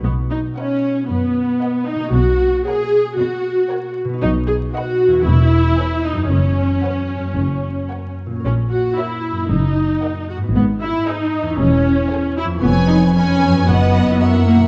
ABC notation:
X:1
M:4/4
L:1/8
Q:1/4=114
K:B
V:1 name="Violin section"
z2 f2 z2 f2 | z2 f2 z2 f2 | z2 f2 z2 g2 | z2 f2 z2 f2 |
z2 e2 z2 f2 | z2 d2 z2 g2 | g2 g2 f2 f2 |]
V:2 name="Violin section"
z2 [Bd]2 z2 [Bd]2 | z2 [Ac]2 z2 [Ac]2 | z2 [Bd]2 z2 [Bc]2 | z2 [Bc]2 z2 [Ac]2 |
z2 [Ac]2 z2 [Ad]2 | z2 [GB]2 z2 [Gc]2 | [Bc]2 [Bc]2 [Bd]2 [Ae]2 |]
V:3 name="Viola section"
B, D C2 B,3 D | F2 G2 F3 z | D G F2 E3 D | C6- C z |
C F E2 D3 F | B, E D2 C3 E | B, D C2 B,3 A, |]
V:4 name="Harp"
[B,,B,DF]8 | [B,,A,CF]8 | [B,,B,DF]4 [E,,B,CG]4 | [F,,B,Cc]4 [F,,A,Cc]4 |
[A,,A,CA]4 [F,,A,DA]4 | [G,,B,DG]4 [E,,CEG]4 | [^E,,B,CG]4 [F,,B,DF]2 [F,,A,=EF]2 |]
V:5 name="Cello section" clef=bass
B,,2 z2 F,,2 z2 | B,,2 z2 B,,2 z2 | B,,2 z2 E,,2 z2 | F,,2 z2 F,,2 z2 |
A,,2 z2 F,,2 z2 | G,,2 z2 E,,2 z2 | ^E,,4 F,,4 |]
V:6 name="Double bass section" clef=bass
B,,,2 z6 | B,,,2 z6 | B,,,2 z2 E,,,2 z2 | F,,,2 z2 F,,,2 z2 |
A,,,2 z2 F,,,2 z2 | G,,,2 z2 E,,,2 z2 | ^E,,,2 z2 F,,,2 z2 |]